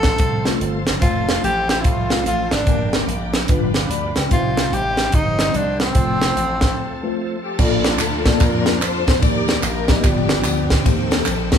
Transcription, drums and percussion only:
0.03 kick medium
0.03 snare loud
0.03 closed hi-hat medium
0.18 kick loud
0.18 closed hi-hat loud
0.45 snare medium
0.45 closed hi-hat medium
0.61 closed hi-hat medium
0.87 snare loud
0.87 closed hi-hat medium
1.02 kick loud
1.02 closed hi-hat loud
1.29 snare loud
1.29 closed hi-hat medium
1.44 closed hi-hat medium
1.69 snare loud
1.69 closed hi-hat medium
1.84 kick loud
1.84 closed hi-hat medium
2.10 snare loud
2.10 closed hi-hat medium
2.26 closed hi-hat medium
2.51 snare medium
2.51 closed hi-hat medium
2.67 kick loud
2.67 closed hi-hat medium
2.93 snare loud
2.93 closed hi-hat medium
3.09 closed hi-hat medium
3.34 snare loud
3.34 closed hi-hat medium
3.48 kick loud
3.48 closed hi-hat medium
3.74 snare medium
3.74 closed hi-hat medium
3.91 closed hi-hat medium
4.16 snare medium
4.16 closed hi-hat medium
4.31 kick loud
4.31 closed hi-hat medium
4.57 snare loud
4.57 closed hi-hat medium
4.73 closed hi-hat medium
4.97 snare medium
4.97 closed hi-hat medium
5.12 kick loud
5.12 closed hi-hat loud
5.39 snare loud
5.39 closed hi-hat medium
5.54 closed hi-hat medium
5.80 snare loud
5.80 closed hi-hat medium
5.95 kick loud
5.95 closed hi-hat loud
6.21 snare loud
6.21 closed hi-hat medium
6.37 closed hi-hat medium
6.61 kick medium
6.61 snare loud
6.61 closed hi-hat medium
7.59 kick loud
7.59 crash loud
7.59 tambourine medium
7.84 snare loud
7.84 ride medium
7.84 tambourine medium
7.99 clap loud
7.99 ride medium
7.99 tambourine loud
8.26 kick medium
8.26 snare loud
8.26 ride medium
8.26 tambourine medium
8.40 kick loud
8.40 clap medium
8.40 ride medium
8.40 tambourine medium
8.66 snare loud
8.66 ride medium
8.66 tambourine medium
8.82 clap loud
8.82 ride medium
8.82 tambourine loud
9.07 kick loud
9.07 snare loud
9.07 ride medium
9.07 tambourine medium
9.23 kick loud
9.23 ride medium
9.23 tambourine medium
9.48 snare loud
9.48 ride medium
9.48 tambourine medium
9.63 clap loud
9.63 ride medium
9.63 tambourine loud
9.88 kick medium
9.88 snare loud
9.88 ride medium
9.88 tambourine medium
10.04 kick loud
10.04 clap medium
10.04 ride medium
10.04 tambourine medium
10.29 snare loud
10.29 ride medium
10.29 tambourine medium
10.44 clap medium
10.44 ride medium
10.44 tambourine loud
10.70 kick medium
10.70 snare loud
10.70 ride medium
10.70 tambourine medium
10.86 kick loud
10.86 ride medium
10.86 tambourine medium
11.11 snare loud
11.11 ride medium
11.11 tambourine medium
11.26 clap loud
11.26 ride medium
11.26 tambourine loud
11.52 kick loud
11.52 snare loud
11.52 ride medium
11.52 tambourine medium

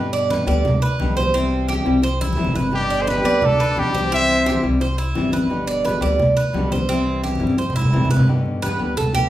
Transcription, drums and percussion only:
0.13 high conga soft
0.31 high conga loud
0.65 high conga soft
0.65 low conga loud
0.83 high conga soft
1.00 high conga loud
1.17 high conga medium
1.34 high conga soft
1.52 high conga soft
1.69 high conga medium
1.87 high conga soft
2.04 high conga soft
2.21 high conga medium
2.33 high conga medium
2.44 low conga medium
2.55 low conga medium
2.73 high conga soft
2.90 high conga soft
3.08 high conga loud
3.42 high conga soft
3.42 low conga loud
3.60 high conga soft
3.77 high conga medium
3.95 high conga medium
4.12 high conga soft
4.29 high conga soft
4.46 high conga loud
4.64 high conga soft
4.81 high conga soft
4.98 high conga soft
5.15 high conga medium
5.32 high conga medium
5.50 high conga soft
5.67 high conga soft
5.85 high conga medium
6.19 high conga soft
6.19 low conga loud
6.37 high conga soft
6.54 high conga medium
6.72 high conga loud
6.89 high conga soft
7.06 high conga soft
7.24 high conga medium
7.35 high conga medium
7.47 high conga medium
7.70 low conga medium
7.82 low conga loud
7.94 low conga loud
8.05 low conga medium
8.17 low conga loud
8.29 high conga soft
8.46 high conga soft
8.63 high conga medium
8.98 high conga soft
8.98 low conga medium
9.15 high conga soft
9.15 low conga medium

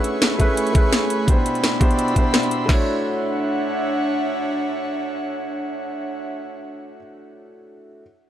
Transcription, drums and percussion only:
0.04 closed hi-hat medium
0.22 snare loud
0.22 closed hi-hat medium
0.40 kick medium
0.40 closed hi-hat medium
0.57 closed hi-hat medium
0.67 closed hi-hat soft
0.75 kick medium
0.75 closed hi-hat medium
0.93 snare loud
0.93 closed hi-hat medium
1.10 closed hi-hat medium
1.28 kick loud
1.28 closed hi-hat medium
1.46 closed hi-hat medium
1.55 closed hi-hat soft
1.64 snare loud
1.64 closed hi-hat medium
1.81 kick medium
1.81 closed hi-hat medium
1.91 closed hi-hat soft
1.99 closed hi-hat medium
2.08 closed hi-hat soft
2.16 kick medium
2.16 closed hi-hat medium
2.34 snare loud
2.34 closed hi-hat medium
2.43 closed hi-hat soft
2.51 closed hi-hat medium
2.69 kick medium
2.69 snare loud
2.69 crash medium

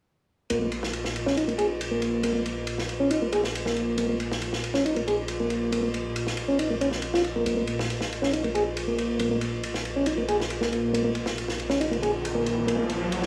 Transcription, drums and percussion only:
0.50 ride medium
0.72 ride medium
0.83 snare soft
0.93 ride medium
1.04 snare soft
1.16 ride medium
1.27 snare soft
1.37 ride medium
1.49 ride soft
1.59 ride medium
1.81 ride medium
2.02 ride medium
2.23 ride medium
2.46 ride medium
2.67 ride medium
2.78 snare soft
2.89 ride medium
3.11 ride medium
3.33 ride medium
3.44 snare soft
3.55 ride medium
3.66 snare soft
3.77 ride medium
3.98 ride medium
4.20 ride medium
4.32 snare soft
4.42 ride medium
4.53 snare soft
4.64 ride medium
4.74 snare soft
4.86 ride medium
4.96 ride soft
5.08 ride medium
5.28 ride medium
5.50 ride medium
5.72 ride medium
5.94 ride medium
6.16 ride medium
6.27 snare soft
6.37 ride medium
6.59 ride medium
6.81 ride medium
6.91 snare soft
7.02 ride medium
7.14 snare soft
7.24 ride medium
7.46 ride medium
7.67 ride medium
7.79 snare medium
7.90 ride medium
8.01 snare soft
8.13 ride medium
8.23 snare soft
8.33 ride medium
8.44 ride soft
8.55 ride medium
8.77 ride medium
8.98 ride medium
9.19 ride medium
9.41 ride medium
9.63 ride medium
9.74 snare soft
9.85 ride medium
10.06 ride medium
10.28 ride medium
10.40 snare soft
10.50 ride medium
10.62 snare soft
10.73 ride medium
10.94 ride medium
11.15 ride medium
11.26 snare soft
11.38 ride medium
11.48 snare soft
11.60 ride medium
11.70 snare soft
11.81 ride medium
11.93 ride soft
12.03 ride medium
12.25 ride medium
12.46 ride medium
12.68 ride medium
12.90 ride medium
13.12 ride medium
13.22 snare soft

